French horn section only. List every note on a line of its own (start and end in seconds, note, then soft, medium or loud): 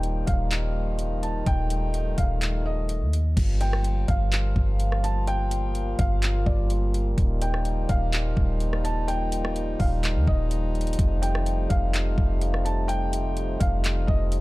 0.00 3.20 D#3 medium
0.00 3.20 F3 medium
0.00 3.20 G3 medium
0.00 1.45 A#3 medium
0.00 3.20 D#4 medium
1.47 3.20 A3 medium
3.37 10.95 A#2 medium
3.37 7.14 F3 medium
3.37 14.41 G3 medium
3.37 10.95 A#3 medium
3.37 7.14 F4 medium
7.18 14.41 F3 medium
7.18 14.41 D#4 medium
10.99 14.41 C3 medium
10.99 14.41 A3 medium